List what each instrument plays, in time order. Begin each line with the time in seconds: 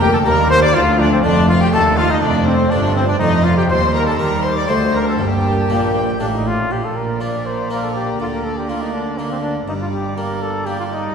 Already playing: double bass section F1, harpsichord F2 A#3 D4, cello section F2, viola section A#3
0.01 trumpet G4, violin section G4 G5
0.13 violin section A4 A5, trumpet A4
0.25 cello section D#2, harpsichord D#2 A#3 D4, double bass section D#2, viola section G3, trumpet A#4, violin section A#4 A#5
0.50 trumpet C5, violin section C5 C6
0.62 trumpet D5, violin section D5 D6
0.74 harpsichord D2, cello section D2, double bass section D2, viola section F3, trumpet F4, violin section F4 F5
0.99 trumpet D4, violin section D4 D5
1.11 trumpet C4, violin section C4 C5
1.23 double bass section F1, cello section F2, harpsichord F2 A3 D4, viola section A3, trumpet D4, violin section D4 D5
1.48 trumpet F4, violin section F4 F5
1.61 trumpet G4, violin section G4 G5
1.73 cello section D#2, harpsichord D#2 A3 D4, double bass section D#2, trumpet A4, violin section A4 A5
1.97 trumpet F4, violin section F4 F5
2.09 violin section D#4 D#5, trumpet D#4
2.21 double bass section F1, cello section F2, harpsichord F2, viola section A3, trumpet D4, violin section D4 D5
2.46 trumpet C4, violin section C4 C5
2.70 double bass section G1, cello section G2, harpsichord G2 A3 D4, viola section F3, trumpet D4, violin section D4 D5
2.95 trumpet C4, violin section C4 C5
3.07 trumpet D4, violin section D4 D5
3.19 double bass section F1, cello section F2, harpsichord F2 A3 D4, viola section F3, trumpet D#4, violin section D#4 D#5
3.44 trumpet F4, violin section F4 F5
3.56 violin section G4 G5, trumpet G4
3.69 cello section D#2, double bass section D#2, harpsichord D#2, viola section G3, violin section C5 C6, trumpet C5
3.94 trumpet A#4, violin section A#4 A#5
4.06 violin section A4 A5, trumpet A4
4.18 double bass section D#2, cello section D#3, harpsichord D#3 C4 G4, violin section A#4 A#5, trumpet A#4
4.43 trumpet C5, violin section C5 C6
4.55 violin section D5 D6, trumpet D5
4.68 cello section D2, harpsichord D2 A3 D4 F#4, double bass section D2, viola section A3, violin section C5 C6, trumpet C5
4.94 violin section A#4 A#5, trumpet A#4
5.07 violin section A4 A5, trumpet A4
5.19 double bass section G1, harpsichord G2, cello section G2, viola section A#3, violin section G4 G5, trumpet G4
5.27 violin section A5
5.36 violin section G5
5.44 violin section A5
5.52 violin section G5
5.60 violin section A5
5.69 double bass section A#1, harpsichord A#2 A#3 D4 G4, cello section A#2, violin section G5
5.77 violin section A5
5.85 violin section G5
6.20 double bass section A1, harpsichord A2 A#3 D4 G4, cello section A2, trumpet D4
6.35 trumpet D#4
6.47 trumpet F4
6.70 double bass section A#1, harpsichord A#2, cello section A#2, viola section A#3, trumpet G4, violin section D5 A#5
6.84 trumpet A4
6.96 trumpet A#4
7.20 harpsichord A#3 D4 F4, trumpet D5
7.46 trumpet C5
7.70 harpsichord A#3 D4 F4, trumpet A#4
7.84 trumpet A4
7.95 trumpet G4
8.20 double bass section D2, cello section D3, harpsichord D3, trumpet F4
8.33 trumpet A#4
8.44 trumpet A4
8.57 trumpet G4
8.69 harpsichord A#3 D4, trumpet F4
8.82 trumpet D#4
8.93 trumpet D4
9.18 trumpet A#3, harpsichord A#3 D4
9.31 trumpet C4
9.43 trumpet D4
9.68 double bass section G1, harpsichord G2, cello section G2, viola section G3, trumpet D#4, violin section D5 A#5
9.81 trumpet F4
9.93 trumpet G4
10.17 harpsichord A#3 D4, trumpet A#4
10.42 trumpet A4
10.66 harpsichord A#3 D4, trumpet G4
10.79 trumpet F4
10.92 trumpet D#4